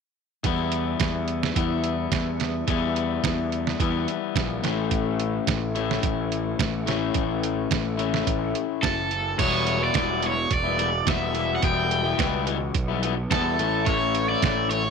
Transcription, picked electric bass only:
0.44 0.94 E2 medium
1.00 1.50 E2 medium
1.56 2.06 E2 medium
2.12 2.62 E2 medium
2.68 3.18 E2 medium
3.24 3.74 E2 medium
3.80 4.05 E2 medium
4.36 4.61 A#1 medium
4.62 5.38 A1 medium
5.47 5.98 A1 medium
6.03 6.54 A1 medium
6.59 7.10 A1 medium
7.15 7.66 A1 medium
7.71 8.21 A1 medium
8.27 8.52 A1 medium
8.83 9.33 F#1 medium
9.39 9.89 E1 medium
9.95 10.45 E1 medium
10.51 11.01 E1 medium
11.08 11.58 E1 medium
11.63 12.13 E1 medium
12.19 12.69 C#2 medium
12.75 13.25 B1 medium
13.31 13.56 E2 medium
13.59 14.34 A1 medium
14.43 14.90 A1 medium

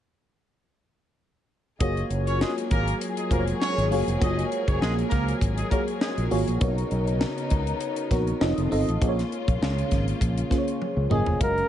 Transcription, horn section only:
1.80 2.04 D#4 medium
1.80 2.04 D#5 loud
2.27 2.38 C#4 medium
2.27 2.38 C#5 loud
2.41 2.54 G#3 medium
2.41 2.54 G#4 medium
2.71 2.95 A#3 medium
2.71 2.95 A#4 loud
3.17 3.28 G#3 medium
3.17 3.28 G#4 medium
3.32 3.44 A#3 medium
3.32 3.45 A#4 medium
3.61 3.85 C#4 loud
3.61 3.85 C#5 loud
4.21 4.45 D#4 medium
4.21 4.45 D#5 medium
4.67 4.78 C#4 medium
4.67 4.78 C#5 medium
4.81 4.94 G#3 medium
4.81 4.94 G#4 loud
5.09 5.34 A#3 medium
5.09 5.34 A#4 loud
5.56 5.68 G#3 medium
5.56 5.68 G#4 medium
5.70 5.84 A#3 medium
5.70 5.84 A#4 medium
6.01 6.25 G#3 medium
6.01 6.25 G#4 medium

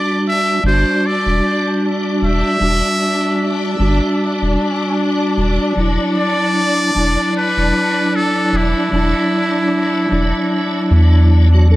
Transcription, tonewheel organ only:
0.00 0.60 G3 medium
0.00 0.61 D4 medium
0.00 0.62 F#4 medium
0.63 2.57 G3 medium
0.63 2.58 D4 medium
0.67 2.59 F#4 medium
2.59 3.75 G3 medium
2.59 3.76 D4 medium
2.63 3.77 F#4 medium
3.78 5.73 G3 medium
3.78 5.74 D4 medium
3.78 5.75 F#4 medium
5.75 6.91 F#3 medium
5.75 6.92 D4 medium
5.80 6.93 E4 medium
6.94 8.89 F#3 medium
6.94 8.90 D4 medium
6.99 8.91 E4 medium
8.91 10.07 F#3 medium
8.91 10.08 D4 medium
8.96 10.09 E4 medium
10.09 11.47 F#3 medium
10.09 11.48 D4 medium
10.13 11.50 E4 medium
11.53 11.67 F#3 medium
11.53 11.67 D4 medium
11.53 11.68 F#4 medium
11.69 11.76 F#3 medium
11.69 11.76 D4 medium
11.69 11.76 A4 medium

